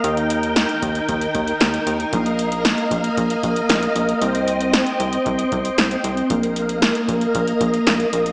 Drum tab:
HH |xxxxxxxxxxxxxxxx|xxxxxxxxxxxxxxxx|xxxxxxxxxxxxxxxx|xxxxxxxxxxxxxxxx|
SD |----o-------o---|----o-------o---|----o-------o---|----o-------o---|
BD |------o-o-o-----|o-----o-o-o-----|--------o-o-----|o-----o-o-o-----|